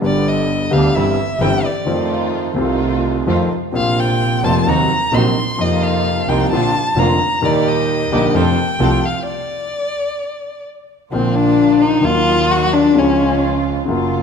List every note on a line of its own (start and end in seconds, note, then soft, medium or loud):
0.00 0.68 G1 medium
0.00 0.69 G1 medium
0.00 0.68 G2 medium
0.00 0.68 D3 medium
0.00 0.69 D3 medium
0.00 0.68 G3 medium
0.00 0.69 G3 medium
0.00 0.69 B3 medium
0.00 0.69 G4 medium
0.05 0.30 D5 medium
0.28 0.74 D#5 medium
0.71 0.91 D2 medium
0.71 0.92 D2 medium
0.71 0.91 D3 medium
0.71 0.91 G3 medium
0.71 0.92 G3 medium
0.71 0.91 B3 medium
0.71 0.92 B3 medium
0.71 0.92 D4 medium
0.71 0.91 G4 medium
0.71 0.97 F5 medium
0.94 1.15 G1 medium
0.94 1.15 G2 medium
0.94 1.15 E3 medium
0.94 1.15 G3 medium
0.94 1.15 C4 medium
0.94 1.15 E4 medium
0.94 1.16 G4 medium
0.94 1.43 E5 medium
1.39 1.60 G1 medium
1.39 1.61 G1 medium
1.39 1.61 G2 medium
1.39 1.61 E3 medium
1.39 1.61 G3 medium
1.39 1.61 C4 medium
1.39 1.61 E4 medium
1.39 1.61 G4 medium
1.39 1.66 G5 medium
1.64 2.11 D5 medium
1.85 2.53 F2 medium
1.85 2.54 F2 medium
1.85 2.52 D#3 medium
1.85 2.53 F3 medium
1.85 2.53 A3 soft
1.85 2.54 A3 medium
1.85 2.54 C4 soft
1.85 2.54 D#4 medium
1.85 2.54 F4 medium
1.85 2.55 F4 medium
2.54 3.23 C2 medium
2.54 3.24 C2 medium
2.54 3.23 C3 medium
2.54 3.22 D#3 medium
2.54 3.23 A3 medium
2.54 3.24 C4 medium
2.54 3.24 D#4 medium
2.58 3.24 A3 medium
2.58 3.24 F4 medium
3.26 3.47 F2 medium
3.26 3.47 D#3 medium
3.26 3.47 F3 medium
3.26 3.47 A3 medium
3.26 3.47 C4 medium
3.26 3.47 D#4 medium
3.26 3.47 F4 medium
3.72 4.40 A#1 medium
3.72 4.40 A#2 medium
3.72 4.39 C3 medium
3.72 4.39 F3 medium
3.72 4.40 A#3 medium
3.72 4.40 A#3 soft
3.72 4.40 C4 medium
3.72 4.40 F4 medium
3.76 4.41 F4 medium
3.76 4.01 F5 medium
4.00 4.46 G5 medium
4.43 4.63 F1 medium
4.43 4.63 F2 medium
4.43 4.63 C3 medium
4.43 4.63 F3 medium
4.43 4.63 A#3 medium
4.43 4.63 C4 medium
4.43 4.63 F4 medium
4.43 4.64 F4 medium
4.43 4.70 A5 medium
4.66 4.86 D#2 medium
4.66 4.86 C3 medium
4.66 4.87 D#3 medium
4.66 4.86 F#3 medium
4.66 4.87 A#3 medium
4.66 4.86 C4 medium
4.66 4.86 D#4 medium
4.66 4.87 D#4 medium
4.66 4.86 F#4 medium
4.66 5.16 A#5 medium
5.11 5.32 A#1 medium
5.11 5.32 A#2 medium
5.11 5.32 C3 medium
5.11 5.32 F#3 medium
5.11 5.32 A#3 medium
5.11 5.33 C4 medium
5.11 5.33 D#4 medium
5.11 5.33 F#4 medium
5.11 5.63 C6 medium
5.57 6.25 F2 medium
5.57 6.24 C3 medium
5.57 6.25 F3 medium
5.57 6.25 A#3 medium
5.57 6.26 A#3 medium
5.57 6.25 D#4 medium
5.57 6.25 F4 medium
5.61 6.26 D#4 medium
5.61 5.85 D#5 medium
5.83 6.31 F5 medium
6.27 6.47 C2 medium
6.27 6.48 C2 medium
6.27 6.48 C3 medium
6.27 6.48 F3 medium
6.27 6.48 A#3 medium
6.27 6.48 D#4 medium
6.27 6.48 F4 medium
6.27 6.51 G5 medium
6.50 6.70 A#1 medium
6.50 6.72 A#1 medium
6.50 6.72 A#2 medium
6.50 6.71 D3 medium
6.50 6.71 F3 medium
6.50 6.71 A#3 medium
6.50 6.72 A#3 medium
6.50 6.71 D4 medium
6.50 6.71 F4 medium
6.50 7.00 A5 medium
6.96 7.16 F1 medium
6.96 7.17 F1 medium
6.96 7.16 F2 medium
6.96 7.16 D3 medium
6.96 7.16 F3 medium
6.96 7.16 A#3 medium
6.96 7.17 A#3 medium
6.96 7.17 D4 medium
6.96 7.17 F4 medium
6.96 7.47 A#5 medium
7.41 8.08 D#2 medium
7.41 8.08 A#2 medium
7.41 8.09 D#3 medium
7.41 8.08 G3 medium
7.41 8.08 A#3 medium
7.41 8.09 D#4 medium
7.41 8.09 G4 medium
7.45 7.69 D5 medium
7.68 8.38 D#5 medium
8.11 8.31 A#1 medium
8.11 8.32 A#1 medium
8.11 8.32 A#2 medium
8.11 8.32 D3 medium
8.11 8.32 G3 medium
8.11 8.32 A#3 medium
8.11 8.31 D4 medium
8.11 8.31 D#4 medium
8.11 8.32 D#4 medium
8.11 8.31 G4 medium
8.34 8.54 F2 medium
8.34 8.54 C3 medium
8.34 8.54 F3 medium
8.34 8.54 A3 medium
8.34 8.55 C4 medium
8.34 8.54 F4 medium
8.34 8.55 F4 medium
8.34 8.55 A4 medium
8.34 9.07 G5 medium
8.79 9.00 C2 medium
8.79 9.00 C3 medium
8.79 9.00 F3 medium
8.79 9.00 A3 medium
8.79 9.00 C4 medium
8.79 9.00 F4 medium
8.79 9.00 A4 medium
9.06 9.27 F5 medium
9.28 10.62 D5 medium
11.11 12.00 A#1 medium
11.11 12.00 A#2 medium
11.11 11.99 D3 medium
11.11 12.00 F3 soft
11.11 12.00 A#3 medium
11.11 12.00 A#3 soft
11.11 11.37 C4 medium
11.11 12.00 D4 medium
11.11 12.00 F4 medium
11.11 12.01 F4 medium
11.35 11.83 D4 medium
11.81 12.07 D#4 medium
12.01 12.91 D#2 medium
12.01 12.92 D#2 medium
12.01 12.91 D#3 medium
12.01 12.91 F#3 medium
12.01 12.92 F#3 medium
12.01 12.91 A#3 soft
12.01 12.92 D#4 medium
12.05 12.92 F4 medium
12.05 12.53 F4 loud
12.05 12.92 F4 medium
12.52 12.74 F#4 medium
12.73 13.00 D4 medium
12.93 13.83 C#2 medium
12.93 13.84 C#2 medium
12.93 12.95 C#3 medium
12.93 13.83 C#3 medium
12.93 13.83 F3 soft
12.93 13.83 G#3 soft
12.93 13.84 G#3 medium
12.93 13.83 C#4 medium
12.93 13.84 F4 medium
12.97 13.43 C#4 medium
12.97 13.84 F4 medium
13.85 14.23 F#1 medium
13.85 14.23 F#2 medium
13.85 14.23 C#3 medium
13.85 14.23 F#3 medium
13.85 14.23 A#3 medium
13.85 14.23 F4 medium
13.90 14.23 F4 medium